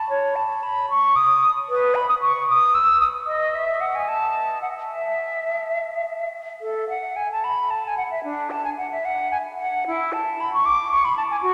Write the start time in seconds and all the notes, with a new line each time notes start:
0.10 C#5
0.36 A5
0.63 B5
0.90 C#6
1.16 D#6
1.69 B4
1.95 B5
2.09 D#6
2.22 C#6
2.48 D#6
2.75 E6
3.01 D#6
3.27 D#5
3.55 E5
3.81 F#5
3.95 G#5
4.08 A5
4.62 F#5
4.90 E5
6.61 A4
6.89 F#5
7.16 G#5
7.32 A5
7.44 B5
7.70 A5
7.87 G#5
7.97 F#5
8.11 E5
8.24 D4
8.51 A5
8.64 G#5
8.78 F#5
8.92 E5
9.05 F#5
9.32 G#5
9.58 F#5
9.87 E4
10.13 A5
10.40 B5
10.53 C#6
10.66 D6
10.91 C#6
11.05 B5
11.17 A5
11.31 G#5
11.42 F#4